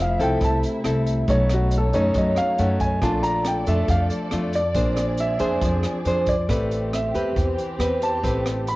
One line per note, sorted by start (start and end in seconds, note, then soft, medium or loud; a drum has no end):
0.00 0.16 F1 medium
0.00 0.39 F3 medium
0.00 2.98 A3 medium
0.00 1.25 E4 medium
0.00 1.26 E5 medium
0.00 0.21 F5 medium
0.20 0.40 C2 medium
0.20 0.81 C4 medium
0.20 0.82 E4 medium
0.20 0.82 A4 medium
0.20 0.42 G5 medium
0.20 closed hi-hat soft
0.41 0.61 C2 medium
0.41 1.26 C3 medium
0.41 0.57 A5 medium
0.41 kick medium
0.41 closed hi-hat medium
0.63 closed hi-hat soft
0.84 1.26 C2 medium
0.84 1.24 C4 medium
0.84 1.25 E4 medium
0.84 1.25 A4 medium
0.84 cross-stick medium
0.84 closed hi-hat medium
1.06 closed hi-hat soft
1.27 1.89 B1 medium
1.27 2.13 B2 medium
1.27 1.90 A3 medium
1.27 1.90 C#4 medium
1.27 3.00 D#4 medium
1.27 1.90 D#4 medium
1.27 3.00 C#5 medium
1.27 1.50 C#5 medium
1.27 kick medium
1.27 closed hi-hat medium
1.49 cross-stick medium
1.49 closed hi-hat soft
1.54 1.73 F#4 medium
1.71 closed hi-hat soft
1.78 1.96 A4 medium
1.93 2.14 F#2 medium
1.93 2.56 A3 medium
1.93 2.56 C#4 medium
1.93 2.56 D#4 medium
1.93 2.15 C#5 medium
1.93 closed hi-hat soft
2.14 2.35 F#2 loud
2.14 3.00 F#3 medium
2.14 2.37 D#5 medium
2.14 kick medium
2.14 closed hi-hat medium
2.36 2.58 F5 medium
2.36 cross-stick medium
2.36 closed hi-hat soft
2.58 2.99 F#2 medium
2.58 2.99 A3 medium
2.58 2.99 C#4 medium
2.58 3.00 D#4 medium
2.58 2.80 F#5 medium
2.58 closed hi-hat soft
2.80 3.02 G#5 medium
2.80 kick medium
2.80 closed hi-hat soft
3.01 3.63 A#1 loud
3.01 3.87 A#2 medium
3.01 3.64 A3 medium
3.01 3.64 D4 medium
3.01 3.64 F4 medium
3.01 4.74 A4 medium
3.01 6.46 D5 medium
3.01 3.24 A5 medium
3.01 kick medium
3.01 cross-stick medium
3.01 closed hi-hat soft
3.23 3.44 A#5 loud
3.23 closed hi-hat soft
3.45 3.68 G5 medium
3.45 cross-stick medium
3.45 closed hi-hat soft
3.66 3.87 F2 medium
3.66 4.29 A3 medium
3.66 4.29 D4 medium
3.66 4.29 F4 medium
3.66 3.89 E5 medium
3.66 closed hi-hat soft
3.88 4.09 F2 medium
3.88 4.74 F3 medium
3.88 4.03 F5 medium
3.88 kick medium
3.88 closed hi-hat medium
4.10 closed hi-hat soft
4.31 4.73 F2 medium
4.31 4.60 A3 medium
4.31 4.61 D4 medium
4.31 4.61 F4 medium
4.31 cross-stick medium
4.31 closed hi-hat soft
4.53 5.16 D5 medium
4.53 closed hi-hat soft
4.74 5.37 A#1 medium
4.74 5.60 A#3 soft
4.74 6.47 C4 medium
4.74 5.37 D4 medium
4.74 6.47 G#4 medium
4.74 5.38 G#4 medium
4.74 5.38 C5 medium
4.74 kick medium
4.74 closed hi-hat medium
4.97 cross-stick medium
4.97 closed hi-hat soft
5.18 5.60 E5 medium
5.18 closed hi-hat medium
5.39 5.61 F2 medium
5.39 6.02 D4 medium
5.39 6.02 G#4 medium
5.39 6.02 C5 medium
5.39 closed hi-hat soft
5.62 5.82 F2 loud
5.62 6.47 F3 medium
5.62 kick medium
5.62 closed hi-hat medium
5.83 cross-stick medium
5.83 closed hi-hat soft
6.05 6.46 F2 medium
6.05 6.35 D4 medium
6.05 6.34 G#4 medium
6.05 6.35 C5 medium
6.05 closed hi-hat soft
6.26 6.90 D5 medium
6.26 kick medium
6.26 closed hi-hat soft
6.49 7.11 A1 medium
6.49 7.34 A3 medium
6.49 8.76 C4 medium
6.49 6.93 C4 medium
6.49 8.76 G4 medium
6.49 6.93 G4 medium
6.49 6.93 B4 medium
6.49 kick medium
6.49 cross-stick medium
6.49 closed hi-hat medium
6.71 closed hi-hat soft
6.93 7.34 E5 medium
6.93 cross-stick medium
6.93 closed hi-hat soft
7.14 7.35 E2 medium
7.14 7.77 C4 medium
7.14 7.77 G4 medium
7.14 7.77 B4 medium
7.14 closed hi-hat soft
7.36 7.57 E2 medium
7.36 8.21 E3 medium
7.36 kick medium
7.36 closed hi-hat medium
7.58 closed hi-hat soft
7.79 8.20 E2 medium
7.79 8.20 C4 medium
7.79 8.20 G4 medium
7.79 8.20 B4 medium
7.79 cross-stick medium
7.79 closed hi-hat soft
8.02 8.64 A5 medium
8.02 closed hi-hat soft
8.24 8.76 A1 medium
8.24 8.76 A3 medium
8.24 8.67 C4 medium
8.24 8.67 G4 medium
8.24 8.67 B4 medium
8.24 kick medium
8.24 closed hi-hat medium
8.46 cross-stick medium
8.46 closed hi-hat soft
8.67 8.76 B5 medium
8.67 closed hi-hat medium